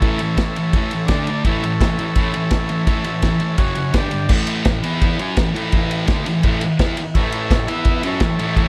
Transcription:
0.00 0.20 A2 medium
0.00 0.20 E3 loud
0.00 1.05 E4 medium
0.00 1.05 A4 medium
0.00 1.07 C#5 medium
0.00 kick loud
0.00 ride medium
0.04 0.20 A3 loud
0.19 0.37 A2 medium
0.19 0.37 E3 medium
0.19 ride medium
0.37 0.55 A2 medium
0.37 0.55 E3 medium
0.37 kick loud
0.37 snare loud
0.37 ride loud
0.56 0.73 A2 medium
0.56 0.73 E3 medium
0.56 ride medium
0.73 0.92 A2 medium
0.73 0.92 E3 medium
0.73 kick loud
0.73 ride medium
0.77 0.93 A3 loud
0.91 1.09 A2 medium
0.91 1.09 E3 medium
0.91 ride medium
1.06 1.44 D4 medium
1.06 1.44 A4 medium
1.06 1.44 D5 medium
1.06 kick loud
1.06 snare loud
1.06 ride loud
1.11 1.27 D3 medium
1.11 1.27 A3 medium
1.11 1.28 D4 medium
1.27 1.44 D3 medium
1.27 1.45 A3 medium
1.27 ride medium
1.45 1.62 A2 medium
1.45 1.62 E3 medium
1.45 1.63 A3 loud
1.45 3.56 E4 medium
1.45 3.57 A4 medium
1.45 kick loud
1.45 ride loud
1.49 3.57 C#5 medium
1.63 1.79 A2 medium
1.63 1.80 E3 medium
1.63 ride medium
1.81 1.97 A2 medium
1.81 1.98 E3 medium
1.81 kick loud
1.81 snare loud
1.81 ride loud
1.98 2.15 A2 medium
1.98 2.15 E3 medium
1.98 ride medium
2.15 2.33 A2 medium
2.15 2.33 E3 medium
2.15 2.34 A3 loud
2.15 kick loud
2.15 ride medium
2.34 2.51 A2 medium
2.34 2.51 E3 medium
2.34 ride medium
2.51 2.69 A2 medium
2.51 2.69 E3 medium
2.51 kick loud
2.51 snare loud
2.51 ride loud
2.69 2.86 A2 medium
2.69 2.86 E3 medium
2.69 ride medium
2.87 3.04 A2 medium
2.87 3.04 E3 loud
2.87 3.05 A3 loud
2.87 kick loud
2.87 ride medium
3.04 3.21 A2 medium
3.04 3.22 E3 medium
3.04 ride medium
3.22 3.39 A2 medium
3.22 3.40 E3 medium
3.22 kick loud
3.22 snare loud
3.22 ride loud
3.40 3.57 A2 medium
3.40 3.58 E3 medium
3.40 ride medium
3.57 3.75 F#2 medium
3.57 3.76 C#3 medium
3.57 3.76 F#3 medium
3.57 3.94 C#4 medium
3.57 3.94 F#4 medium
3.57 3.95 C#5 medium
3.57 kick loud
3.57 ride loud
3.75 3.92 F#2 medium
3.75 3.93 C#3 medium
3.75 ride medium
3.93 4.10 G2 medium
3.93 4.10 D3 medium
3.93 4.12 G3 medium
3.93 4.31 D4 medium
3.93 kick loud
3.93 snare loud
3.93 ride loud
3.97 4.32 G4 medium
3.97 4.32 D5 medium
4.11 4.28 G2 medium
4.11 4.28 D3 medium
4.11 ride medium
4.29 4.64 A2 loud
4.29 4.65 E3 loud
4.29 4.66 A3 loud
4.29 kick loud
4.29 crash loud
4.47 ride medium
4.65 4.80 A2 medium
4.65 4.80 E3 medium
4.65 kick loud
4.65 snare loud
4.65 ride loud
4.83 5.19 E3 medium
4.83 5.19 B3 medium
4.83 5.19 E4 loud
4.83 ride medium
5.01 kick loud
5.01 ride loud
5.19 5.37 F#3 medium
5.19 5.38 C#4 medium
5.19 5.38 F#4 medium
5.19 ride medium
5.37 5.52 A2 medium
5.37 5.52 E3 medium
5.37 kick loud
5.37 snare loud
5.37 ride loud
5.55 6.08 A2 medium
5.55 6.08 E3 loud
5.55 6.07 A3 loud
5.55 ride medium
5.72 kick loud
5.72 ride loud
5.91 ride medium
6.08 6.25 D3 loud
6.08 6.26 A3 loud
6.08 6.26 D4 loud
6.08 kick loud
6.08 snare loud
6.08 ride loud
6.26 6.41 A2 medium
6.26 6.41 E3 medium
6.26 ride medium
6.43 6.61 A2 medium
6.43 6.62 E3 medium
6.43 6.62 A3 loud
6.43 kick loud
6.43 ride loud
6.61 ride medium
6.79 6.96 E3 medium
6.79 6.97 B3 loud
6.79 6.97 E4 medium
6.79 kick loud
6.79 snare loud
6.79 ride loud
6.97 muted distorted electric guitar stroke medium
6.97 ride medium
7.14 7.50 A2 loud
7.14 7.51 E3 loud
7.14 7.51 A3 loud
7.14 7.65 E4 medium
7.14 7.69 A4 medium
7.14 7.68 C#5 medium
7.14 kick loud
7.14 ride loud
7.32 ride medium
7.51 7.65 A2 medium
7.51 7.65 E3 medium
7.51 kick loud
7.51 snare loud
7.51 ride loud
7.66 8.02 E3 medium
7.66 8.03 B3 medium
7.66 8.02 E4 medium
7.66 8.04 E4 medium
7.66 8.04 B4 medium
7.66 8.03 E5 medium
7.66 ride medium
7.85 kick loud
7.85 ride loud
8.03 8.20 F#3 medium
8.03 8.21 C#4 medium
8.03 8.68 E4 medium
8.03 8.21 F#4 loud
8.03 ride medium
8.07 8.68 A4 medium
8.07 8.68 C#5 medium
8.20 8.35 A2 medium
8.20 8.36 E3 medium
8.20 kick loud
8.20 snare loud
8.20 ride loud
8.39 8.68 A2 medium
8.39 8.68 E3 medium
8.39 8.68 A3 loud
8.39 ride medium
8.57 kick loud
8.57 ride loud

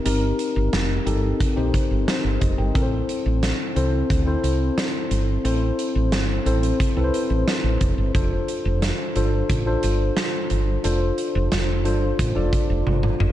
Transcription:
0.00 0.05 C4 medium
0.00 0.05 D#4 medium
0.00 0.06 G4 medium
0.00 0.06 A#4 medium
0.05 0.31 G1 loud
0.05 0.86 C4 medium
0.05 0.86 D#4 medium
0.05 0.87 G4 medium
0.05 0.87 A#4 medium
0.05 closed hi-hat medium
0.39 closed hi-hat medium
0.56 0.69 G1 medium
0.73 0.98 F1 medium
0.73 snare medium
0.73 closed hi-hat medium
1.06 1.32 G1 medium
1.06 1.47 C4 medium
1.06 1.47 D#4 medium
1.06 1.47 G4 medium
1.06 1.47 A4 medium
1.06 closed hi-hat medium
1.40 kick medium
1.40 closed hi-hat medium
1.56 1.70 A#1 medium
1.56 2.51 C4 medium
1.56 2.07 D#4 medium
1.56 2.08 G4 medium
1.56 2.06 C5 medium
1.74 kick medium
1.74 closed hi-hat medium
1.91 2.04 G1 medium
2.07 2.40 D#4 soft
2.07 2.40 C5 medium
2.07 snare loud
2.07 closed hi-hat medium
2.24 2.37 G1 medium
2.41 2.54 F1 medium
2.41 2.57 G4 medium
2.41 2.57 D#5 medium
2.41 kick medium
2.41 closed hi-hat medium
2.58 2.71 G1 medium
2.58 2.74 A#4 medium
2.58 2.90 G5 medium
2.74 3.00 A1 medium
2.74 3.56 C4 medium
2.74 3.56 E4 medium
2.74 3.56 A4 medium
2.74 2.82 A#4 medium
2.74 kick loud
2.74 closed hi-hat medium
2.82 3.60 C5 medium
3.09 closed hi-hat medium
3.26 3.51 A1 medium
3.43 snare medium
3.43 closed hi-hat medium
3.75 4.01 C2 medium
3.75 4.16 C4 medium
3.75 4.17 E4 medium
3.75 4.17 A4 medium
3.75 4.17 C5 medium
3.75 closed hi-hat medium
4.10 4.35 D2 medium
4.10 kick medium
4.10 closed hi-hat medium
4.26 5.21 C4 medium
4.26 5.21 E4 medium
4.26 5.21 A4 medium
4.26 5.22 C5 medium
4.43 4.69 C2 medium
4.43 closed hi-hat medium
4.78 snare loud
4.78 closed hi-hat medium
5.11 5.36 G1 medium
5.11 closed hi-hat medium
5.44 5.70 A1 medium
5.44 6.25 C4 medium
5.44 6.26 E4 medium
5.44 6.26 A4 medium
5.44 6.26 C5 medium
5.44 closed hi-hat medium
5.79 closed hi-hat medium
5.95 6.12 A1 medium
6.12 6.38 G1 medium
6.12 snare medium
6.12 closed hi-hat medium
6.46 6.71 A1 medium
6.46 6.86 C4 medium
6.46 6.86 E4 medium
6.46 6.87 A4 medium
6.46 6.87 C5 medium
6.46 closed hi-hat medium
6.63 closed hi-hat soft
6.80 kick medium
6.80 closed hi-hat medium
6.96 7.09 C2 medium
6.96 7.91 C4 medium
6.96 7.91 E4 medium
6.96 7.91 A4 medium
6.96 7.04 B4 medium
7.04 7.95 C5 medium
7.14 closed hi-hat medium
7.30 7.43 A1 medium
7.48 snare loud
7.48 closed hi-hat medium
7.64 7.76 A1 medium
7.81 7.94 E1 medium
7.81 kick medium
7.81 closed hi-hat medium
7.98 8.10 G1 medium
8.14 8.40 F1 medium
8.14 8.95 D4 medium
8.14 8.95 F4 medium
8.14 8.96 A4 medium
8.14 8.96 C5 medium
8.14 kick loud
8.14 closed hi-hat medium
8.48 closed hi-hat medium
8.65 8.90 F1 medium
8.82 snare loud
8.82 closed hi-hat medium
9.15 9.41 G1 medium
9.15 9.56 D4 medium
9.15 9.56 F4 medium
9.15 9.56 A4 medium
9.15 9.57 C5 medium
9.15 closed hi-hat medium
9.49 9.75 A1 medium
9.49 kick medium
9.49 closed hi-hat medium
9.66 10.61 D4 medium
9.66 10.61 F4 medium
9.66 10.61 A4 medium
9.66 10.61 C5 medium
9.83 10.09 G1 medium
9.83 closed hi-hat medium
10.17 snare loud
10.17 closed hi-hat medium
10.50 10.76 G1 medium
10.50 closed hi-hat medium
10.84 11.10 F1 medium
10.84 11.65 D4 medium
10.84 11.65 F4 medium
10.84 11.65 A4 medium
10.84 11.65 C5 medium
10.84 closed hi-hat medium
11.18 closed hi-hat medium
11.35 11.48 F1 medium
11.52 11.86 F1 medium
11.52 snare loud
11.52 closed hi-hat medium
11.85 12.11 G1 medium
11.85 12.25 D4 medium
11.85 12.26 F4 medium
11.85 12.26 A4 medium
11.85 12.26 C5 medium
11.85 closed hi-hat medium
12.19 12.32 A1 medium
12.19 kick medium
12.19 closed hi-hat medium
12.35 12.49 F1 medium
12.35 13.30 D4 medium
12.35 13.30 F4 medium
12.35 13.30 A4 medium
12.35 13.31 D5 medium
12.53 kick medium
12.53 closed hi-hat medium
12.70 12.82 F1 medium
12.87 13.12 G1 medium
12.87 high tom medium
13.03 mid tom medium
13.20 13.32 G1 medium
13.20 mid tom medium

